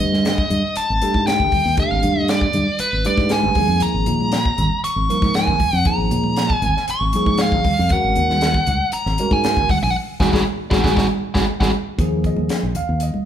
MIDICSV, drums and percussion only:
0, 0, Header, 1, 2, 480
1, 0, Start_track
1, 0, Tempo, 510638
1, 1674, Time_signature, 4, 2, 24, 8
1, 12457, End_track
2, 0, Start_track
2, 0, Title_t, "Drums"
2, 0, Note_on_c, 9, 64, 61
2, 94, Note_off_c, 9, 64, 0
2, 118, Note_on_c, 9, 63, 68
2, 127, Note_on_c, 9, 38, 27
2, 212, Note_off_c, 9, 63, 0
2, 221, Note_off_c, 9, 38, 0
2, 235, Note_on_c, 9, 42, 71
2, 244, Note_on_c, 9, 38, 115
2, 329, Note_off_c, 9, 42, 0
2, 338, Note_off_c, 9, 38, 0
2, 358, Note_on_c, 9, 36, 87
2, 452, Note_off_c, 9, 36, 0
2, 472, Note_on_c, 9, 63, 58
2, 472, Note_on_c, 9, 64, 54
2, 473, Note_on_c, 9, 42, 57
2, 566, Note_off_c, 9, 63, 0
2, 566, Note_off_c, 9, 64, 0
2, 567, Note_off_c, 9, 42, 0
2, 710, Note_on_c, 9, 42, 82
2, 804, Note_off_c, 9, 42, 0
2, 955, Note_on_c, 9, 42, 64
2, 959, Note_on_c, 9, 63, 60
2, 1049, Note_off_c, 9, 42, 0
2, 1053, Note_off_c, 9, 63, 0
2, 1075, Note_on_c, 9, 36, 76
2, 1169, Note_off_c, 9, 36, 0
2, 1194, Note_on_c, 9, 42, 72
2, 1204, Note_on_c, 9, 38, 100
2, 1288, Note_off_c, 9, 42, 0
2, 1298, Note_off_c, 9, 38, 0
2, 1314, Note_on_c, 9, 36, 65
2, 1408, Note_off_c, 9, 36, 0
2, 1426, Note_on_c, 9, 46, 72
2, 1430, Note_on_c, 9, 36, 70
2, 1432, Note_on_c, 9, 63, 65
2, 1432, Note_on_c, 9, 64, 75
2, 1520, Note_off_c, 9, 46, 0
2, 1524, Note_off_c, 9, 36, 0
2, 1526, Note_off_c, 9, 63, 0
2, 1526, Note_off_c, 9, 64, 0
2, 1666, Note_on_c, 9, 42, 84
2, 1670, Note_on_c, 9, 36, 110
2, 1676, Note_on_c, 9, 64, 66
2, 1760, Note_off_c, 9, 42, 0
2, 1764, Note_off_c, 9, 36, 0
2, 1770, Note_off_c, 9, 64, 0
2, 1906, Note_on_c, 9, 42, 54
2, 1915, Note_on_c, 9, 64, 65
2, 2000, Note_off_c, 9, 42, 0
2, 2009, Note_off_c, 9, 64, 0
2, 2035, Note_on_c, 9, 63, 71
2, 2129, Note_off_c, 9, 63, 0
2, 2146, Note_on_c, 9, 42, 78
2, 2155, Note_on_c, 9, 38, 115
2, 2240, Note_off_c, 9, 42, 0
2, 2249, Note_off_c, 9, 38, 0
2, 2269, Note_on_c, 9, 36, 85
2, 2363, Note_off_c, 9, 36, 0
2, 2380, Note_on_c, 9, 42, 60
2, 2386, Note_on_c, 9, 63, 63
2, 2386, Note_on_c, 9, 64, 64
2, 2474, Note_off_c, 9, 42, 0
2, 2480, Note_off_c, 9, 63, 0
2, 2480, Note_off_c, 9, 64, 0
2, 2620, Note_on_c, 9, 42, 95
2, 2714, Note_off_c, 9, 42, 0
2, 2864, Note_on_c, 9, 42, 55
2, 2869, Note_on_c, 9, 63, 70
2, 2958, Note_off_c, 9, 42, 0
2, 2963, Note_off_c, 9, 63, 0
2, 2985, Note_on_c, 9, 36, 92
2, 2988, Note_on_c, 9, 38, 34
2, 3079, Note_off_c, 9, 36, 0
2, 3082, Note_off_c, 9, 38, 0
2, 3094, Note_on_c, 9, 42, 82
2, 3104, Note_on_c, 9, 38, 100
2, 3188, Note_off_c, 9, 42, 0
2, 3198, Note_off_c, 9, 38, 0
2, 3228, Note_on_c, 9, 63, 70
2, 3322, Note_off_c, 9, 63, 0
2, 3335, Note_on_c, 9, 46, 74
2, 3341, Note_on_c, 9, 36, 96
2, 3349, Note_on_c, 9, 63, 76
2, 3349, Note_on_c, 9, 64, 70
2, 3429, Note_off_c, 9, 46, 0
2, 3435, Note_off_c, 9, 36, 0
2, 3443, Note_off_c, 9, 63, 0
2, 3443, Note_off_c, 9, 64, 0
2, 3574, Note_on_c, 9, 42, 89
2, 3587, Note_on_c, 9, 64, 64
2, 3668, Note_off_c, 9, 42, 0
2, 3681, Note_off_c, 9, 64, 0
2, 3818, Note_on_c, 9, 42, 55
2, 3825, Note_on_c, 9, 64, 75
2, 3912, Note_off_c, 9, 42, 0
2, 3919, Note_off_c, 9, 64, 0
2, 3952, Note_on_c, 9, 63, 70
2, 4046, Note_off_c, 9, 63, 0
2, 4058, Note_on_c, 9, 42, 74
2, 4067, Note_on_c, 9, 38, 109
2, 4152, Note_off_c, 9, 42, 0
2, 4161, Note_off_c, 9, 38, 0
2, 4187, Note_on_c, 9, 36, 86
2, 4281, Note_off_c, 9, 36, 0
2, 4304, Note_on_c, 9, 42, 60
2, 4312, Note_on_c, 9, 63, 56
2, 4312, Note_on_c, 9, 64, 73
2, 4398, Note_off_c, 9, 42, 0
2, 4406, Note_off_c, 9, 63, 0
2, 4406, Note_off_c, 9, 64, 0
2, 4551, Note_on_c, 9, 42, 80
2, 4645, Note_off_c, 9, 42, 0
2, 4784, Note_on_c, 9, 63, 61
2, 4795, Note_on_c, 9, 42, 54
2, 4878, Note_off_c, 9, 63, 0
2, 4889, Note_off_c, 9, 42, 0
2, 4908, Note_on_c, 9, 36, 90
2, 4914, Note_on_c, 9, 38, 35
2, 5002, Note_off_c, 9, 36, 0
2, 5008, Note_off_c, 9, 38, 0
2, 5020, Note_on_c, 9, 42, 69
2, 5030, Note_on_c, 9, 38, 99
2, 5114, Note_off_c, 9, 42, 0
2, 5124, Note_off_c, 9, 38, 0
2, 5145, Note_on_c, 9, 36, 70
2, 5239, Note_off_c, 9, 36, 0
2, 5259, Note_on_c, 9, 46, 66
2, 5262, Note_on_c, 9, 63, 73
2, 5262, Note_on_c, 9, 64, 75
2, 5263, Note_on_c, 9, 36, 73
2, 5353, Note_off_c, 9, 46, 0
2, 5356, Note_off_c, 9, 63, 0
2, 5356, Note_off_c, 9, 64, 0
2, 5357, Note_off_c, 9, 36, 0
2, 5500, Note_on_c, 9, 42, 83
2, 5504, Note_on_c, 9, 36, 106
2, 5505, Note_on_c, 9, 64, 58
2, 5594, Note_off_c, 9, 42, 0
2, 5598, Note_off_c, 9, 36, 0
2, 5599, Note_off_c, 9, 64, 0
2, 5744, Note_on_c, 9, 42, 59
2, 5750, Note_on_c, 9, 64, 66
2, 5838, Note_off_c, 9, 42, 0
2, 5844, Note_off_c, 9, 64, 0
2, 5862, Note_on_c, 9, 63, 68
2, 5956, Note_off_c, 9, 63, 0
2, 5983, Note_on_c, 9, 42, 82
2, 5992, Note_on_c, 9, 38, 101
2, 6077, Note_off_c, 9, 42, 0
2, 6086, Note_off_c, 9, 38, 0
2, 6109, Note_on_c, 9, 36, 86
2, 6203, Note_off_c, 9, 36, 0
2, 6223, Note_on_c, 9, 42, 57
2, 6238, Note_on_c, 9, 63, 53
2, 6238, Note_on_c, 9, 64, 65
2, 6317, Note_off_c, 9, 42, 0
2, 6332, Note_off_c, 9, 63, 0
2, 6332, Note_off_c, 9, 64, 0
2, 6362, Note_on_c, 9, 38, 34
2, 6456, Note_off_c, 9, 38, 0
2, 6465, Note_on_c, 9, 42, 92
2, 6559, Note_off_c, 9, 42, 0
2, 6701, Note_on_c, 9, 42, 66
2, 6704, Note_on_c, 9, 63, 69
2, 6795, Note_off_c, 9, 42, 0
2, 6798, Note_off_c, 9, 63, 0
2, 6828, Note_on_c, 9, 36, 87
2, 6922, Note_off_c, 9, 36, 0
2, 6933, Note_on_c, 9, 42, 83
2, 6942, Note_on_c, 9, 38, 113
2, 7027, Note_off_c, 9, 42, 0
2, 7036, Note_off_c, 9, 38, 0
2, 7069, Note_on_c, 9, 36, 76
2, 7163, Note_off_c, 9, 36, 0
2, 7184, Note_on_c, 9, 46, 72
2, 7188, Note_on_c, 9, 36, 76
2, 7195, Note_on_c, 9, 63, 82
2, 7195, Note_on_c, 9, 64, 79
2, 7278, Note_off_c, 9, 46, 0
2, 7282, Note_off_c, 9, 36, 0
2, 7289, Note_off_c, 9, 63, 0
2, 7289, Note_off_c, 9, 64, 0
2, 7419, Note_on_c, 9, 42, 86
2, 7429, Note_on_c, 9, 36, 103
2, 7444, Note_on_c, 9, 64, 66
2, 7513, Note_off_c, 9, 42, 0
2, 7523, Note_off_c, 9, 36, 0
2, 7538, Note_off_c, 9, 64, 0
2, 7666, Note_on_c, 9, 42, 60
2, 7680, Note_on_c, 9, 64, 64
2, 7760, Note_off_c, 9, 42, 0
2, 7774, Note_off_c, 9, 64, 0
2, 7801, Note_on_c, 9, 38, 33
2, 7807, Note_on_c, 9, 63, 75
2, 7895, Note_off_c, 9, 38, 0
2, 7901, Note_off_c, 9, 63, 0
2, 7907, Note_on_c, 9, 42, 87
2, 7916, Note_on_c, 9, 38, 111
2, 8001, Note_off_c, 9, 42, 0
2, 8010, Note_off_c, 9, 38, 0
2, 8032, Note_on_c, 9, 36, 92
2, 8126, Note_off_c, 9, 36, 0
2, 8146, Note_on_c, 9, 42, 62
2, 8167, Note_on_c, 9, 63, 61
2, 8167, Note_on_c, 9, 64, 63
2, 8240, Note_off_c, 9, 42, 0
2, 8261, Note_off_c, 9, 63, 0
2, 8261, Note_off_c, 9, 64, 0
2, 8383, Note_on_c, 9, 42, 88
2, 8477, Note_off_c, 9, 42, 0
2, 8517, Note_on_c, 9, 38, 33
2, 8611, Note_off_c, 9, 38, 0
2, 8628, Note_on_c, 9, 42, 54
2, 8640, Note_on_c, 9, 63, 64
2, 8722, Note_off_c, 9, 42, 0
2, 8734, Note_off_c, 9, 63, 0
2, 8753, Note_on_c, 9, 36, 87
2, 8847, Note_off_c, 9, 36, 0
2, 8871, Note_on_c, 9, 42, 72
2, 8880, Note_on_c, 9, 38, 108
2, 8965, Note_off_c, 9, 42, 0
2, 8974, Note_off_c, 9, 38, 0
2, 8993, Note_on_c, 9, 36, 75
2, 9087, Note_off_c, 9, 36, 0
2, 9112, Note_on_c, 9, 36, 74
2, 9113, Note_on_c, 9, 63, 73
2, 9113, Note_on_c, 9, 64, 78
2, 9114, Note_on_c, 9, 46, 74
2, 9206, Note_off_c, 9, 36, 0
2, 9207, Note_off_c, 9, 63, 0
2, 9207, Note_off_c, 9, 64, 0
2, 9208, Note_off_c, 9, 46, 0
2, 9589, Note_on_c, 9, 36, 89
2, 9595, Note_on_c, 9, 63, 104
2, 9600, Note_on_c, 9, 38, 83
2, 9683, Note_off_c, 9, 36, 0
2, 9689, Note_off_c, 9, 63, 0
2, 9694, Note_off_c, 9, 38, 0
2, 9709, Note_on_c, 9, 63, 106
2, 9713, Note_on_c, 9, 36, 86
2, 9727, Note_on_c, 9, 38, 87
2, 9803, Note_off_c, 9, 63, 0
2, 9807, Note_off_c, 9, 36, 0
2, 9821, Note_off_c, 9, 38, 0
2, 10065, Note_on_c, 9, 63, 90
2, 10070, Note_on_c, 9, 36, 103
2, 10082, Note_on_c, 9, 38, 90
2, 10159, Note_off_c, 9, 63, 0
2, 10164, Note_off_c, 9, 36, 0
2, 10176, Note_off_c, 9, 38, 0
2, 10181, Note_on_c, 9, 63, 91
2, 10192, Note_on_c, 9, 36, 94
2, 10207, Note_on_c, 9, 38, 93
2, 10275, Note_off_c, 9, 63, 0
2, 10286, Note_off_c, 9, 36, 0
2, 10298, Note_on_c, 9, 63, 94
2, 10301, Note_off_c, 9, 38, 0
2, 10310, Note_on_c, 9, 36, 100
2, 10322, Note_on_c, 9, 38, 97
2, 10392, Note_off_c, 9, 63, 0
2, 10404, Note_off_c, 9, 36, 0
2, 10416, Note_off_c, 9, 38, 0
2, 10663, Note_on_c, 9, 63, 89
2, 10670, Note_on_c, 9, 36, 92
2, 10677, Note_on_c, 9, 38, 95
2, 10757, Note_off_c, 9, 63, 0
2, 10764, Note_off_c, 9, 36, 0
2, 10771, Note_off_c, 9, 38, 0
2, 10910, Note_on_c, 9, 36, 84
2, 10910, Note_on_c, 9, 63, 93
2, 10923, Note_on_c, 9, 38, 86
2, 11004, Note_off_c, 9, 36, 0
2, 11004, Note_off_c, 9, 63, 0
2, 11017, Note_off_c, 9, 38, 0
2, 11267, Note_on_c, 9, 36, 103
2, 11269, Note_on_c, 9, 42, 80
2, 11361, Note_off_c, 9, 36, 0
2, 11363, Note_off_c, 9, 42, 0
2, 11507, Note_on_c, 9, 36, 65
2, 11508, Note_on_c, 9, 42, 48
2, 11601, Note_off_c, 9, 36, 0
2, 11602, Note_off_c, 9, 42, 0
2, 11622, Note_on_c, 9, 63, 76
2, 11716, Note_off_c, 9, 63, 0
2, 11744, Note_on_c, 9, 42, 73
2, 11753, Note_on_c, 9, 38, 96
2, 11838, Note_off_c, 9, 42, 0
2, 11847, Note_off_c, 9, 38, 0
2, 11984, Note_on_c, 9, 42, 59
2, 11986, Note_on_c, 9, 64, 70
2, 12078, Note_off_c, 9, 42, 0
2, 12080, Note_off_c, 9, 64, 0
2, 12220, Note_on_c, 9, 42, 70
2, 12314, Note_off_c, 9, 42, 0
2, 12349, Note_on_c, 9, 63, 70
2, 12443, Note_off_c, 9, 63, 0
2, 12457, End_track
0, 0, End_of_file